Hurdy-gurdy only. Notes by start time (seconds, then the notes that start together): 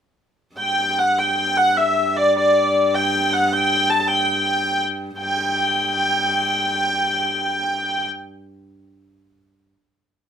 0.58 G5
0.98 F#5
1.19 G5
1.57 F#5
1.77 E5
2.16 D5
2.36 D5
2.95 G5
3.33 F#5
3.53 G5
3.90 A5
4.00 A5
4.07 G5
5.19 G5